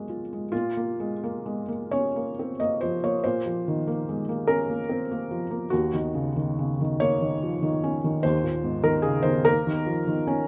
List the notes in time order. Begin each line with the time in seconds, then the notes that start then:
Already playing: A#2 F#3 G#3 A#3 C#4
0.09 F4
0.33 G#3
0.52 A#2 F4
0.77 A#3
1.00 G#3
1.24 A#3
1.46 G#3
1.68 A#3
1.91 C#4 C#5
2.16 A#3
2.39 C4
2.60 A#3 D#5
2.81 F3 C5
3.04 A#3 C#5
3.24 A#2 C5
3.46 F3
3.68 D#3
3.87 A#3
4.09 G#3
4.29 A#3
4.47 C#4 A#4
4.70 A#3
4.89 C4
5.11 A#3
5.31 F3
5.51 A#3
5.70 D#2 F#4
5.94 D#3
6.14 C#3
6.36 D#3
6.59 C#3
6.81 D#3
7.00 A#3 C#5
7.21 D#3
7.43 F3
7.62 D#3
7.84 C#4
8.04 D#3
8.23 D#2 C5
8.44 A#2
8.64 G#2
8.84 D#3 A#4
9.02 C#3 G#4
9.23 D#3 C5
9.45 A#3 A#4
9.67 D#3
9.86 F3
10.07 D#3
10.27 C#4